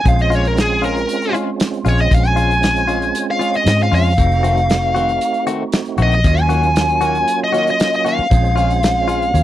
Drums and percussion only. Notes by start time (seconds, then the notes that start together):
0.06 kick, closed hi-hat
0.19 closed hi-hat
0.32 closed hi-hat
0.45 closed hi-hat
0.57 snare, closed hi-hat
0.84 closed hi-hat
0.97 closed hi-hat
1.09 closed hi-hat
1.22 closed hi-hat
1.35 closed hi-hat
1.60 snare, closed hi-hat
1.74 closed hi-hat
1.86 closed hi-hat
1.99 closed hi-hat
2.11 kick, closed hi-hat
2.25 closed hi-hat
2.37 closed hi-hat
2.51 closed hi-hat
2.63 snare, closed hi-hat
2.76 closed hi-hat
2.88 closed hi-hat
3.02 closed hi-hat
3.15 closed hi-hat
3.41 closed hi-hat
3.54 closed hi-hat
3.66 snare, closed hi-hat
3.80 closed hi-hat
3.93 snare, open hi-hat
4.18 kick, closed hi-hat
4.31 closed hi-hat
4.44 closed hi-hat
4.57 closed hi-hat
4.70 snare, closed hi-hat
4.96 closed hi-hat
5.09 closed hi-hat
5.21 closed hi-hat
5.34 closed hi-hat
5.47 closed hi-hat
5.72 snare, closed hi-hat
5.86 closed hi-hat
5.98 closed hi-hat
6.12 closed hi-hat
6.24 kick, closed hi-hat
6.37 closed hi-hat
6.50 closed hi-hat
6.63 closed hi-hat
6.76 snare, closed hi-hat
6.89 closed hi-hat
7.01 closed hi-hat
7.15 closed hi-hat
7.28 closed hi-hat
7.54 closed hi-hat
7.67 closed hi-hat
7.80 snare, closed hi-hat
7.93 closed hi-hat
8.06 closed hi-hat
8.31 kick, closed hi-hat
8.45 closed hi-hat
8.57 closed hi-hat
8.71 closed hi-hat
8.83 snare, closed hi-hat
9.09 closed hi-hat
9.22 closed hi-hat
9.35 closed hi-hat